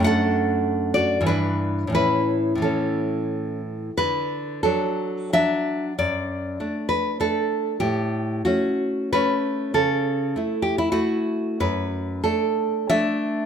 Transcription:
\new Staff \with { instrumentName = "Nylon-string guitar" } { \time 3/4 \key d \major \tempo 4 = 96 << { <a' fis''>4. <fis' d''>8 <d' b'>4 | <e' b'>4 <cis' a'>4. r8 | b'4 a'4 e''4 | d''4. b'8 a'4 |
g'4 fis'4 b'4 | a'4. g'16 e'16 fis'4 | b'4 a'4 e''4 | } \\ { <fis, a d'>2 <g, e>4 | <a, e cis'>4 <a, e>2 | d4 <fis d'>4 <fis d'>4 | fis,4 <a d'>4 <a d'>4 |
a,4 <a cis'>4 <a cis'>4 | cis4 <a e'>4 <a e'>4 | fis,4 <a d'>4 <a d'>4 | } >> }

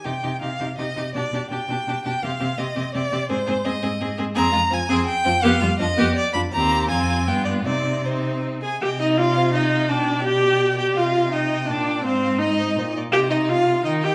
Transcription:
<<
  \new Staff \with { instrumentName = "Violin" } { \time 3/4 \key c \minor \tempo 4 = 166 g''4 f''4 ees''4 | d''4 g''4. g''8 | f''4 ees''4 d''4 | c''4 ees''4. r8 |
bes''4 aes''4 g''4 | f''4 ees''4 d''8 b''8 | bes''4 aes''4 g''8 d''8 | d''4 c''4 r4 |
ees''4 d''8 c''8 ees''8 f''8 | g''4 d''2 | ees''4 g''2 | f''4 ees''8 c''8 c''8 d''8 |
ees''4 f''4 g''4 | }
  \new Staff \with { instrumentName = "Violin" } { \time 3/4 \key c \minor g'8 g'8 g'8 g'8 g'8 g'8 | g'8 g'8 g'8 g'8 g'8 g'8 | g'8 g'8 g'8 g'8 g'8 g'8 | aes'8 aes'8 aes'8 aes'8 aes'8 aes'8 |
aes'8 f'8 c'8 aes'8 r8 c'8 | g'8 f'8 d'8 g'8 r8 d'8 | g'4 f'4 f'4 | ees'4 ees'4. aes''8 |
g''8 ees''8 f''4 ees''4 | d''4 g''4. g''8 | f''4 ees''4 d''4 | c''4 ees''4. r8 |
g''8 ees''8 f''4 ees''8 g''8 | }
  \new Staff \with { instrumentName = "Viola" } { \time 3/4 \key c \minor ees'8 ees'8 ees'8 ees'8 ees'8 ees'8 | d'8 d'8 d'8 d'8 d'8 d'8 | c'8 c'8 c'8 c'8 c'8 c'8 | c'8 c'8 c'8 c'8 c'8 c'8 |
c'8 aes8 f8 c'8 r8 f8 | b8 g8 f8 b8 r8 f8 | c'4 c'4 b4 | c'4 c'4. aes'8 |
g'8 ees'8 f'4 ees'4 | d'4 g'4. g'8 | f'4 ees'4 d'4 | c'4 ees'4. r8 |
g'8 ees'8 f'4 ees'8 g'8 | }
  \new Staff \with { instrumentName = "Cello" } { \clef bass \time 3/4 \key c \minor c8 c8 c8 c8 c8 c8 | b,8 b,8 b,8 b,8 b,8 b,8 | c8 c8 c8 c8 c8 c8 | aes,8 aes,8 aes,8 aes,8 aes,8 aes,8 |
f,8 f,8 f,8 f,8 r8 f,8 | f,8 f,8 f,8 f,8 r8 f,8 | ees,4 f,4 g,4 | c2~ c8 r8 |
c2. | b,2. | c2 bes,4 | aes,2 bes,4 |
c2 ees4 | }
>>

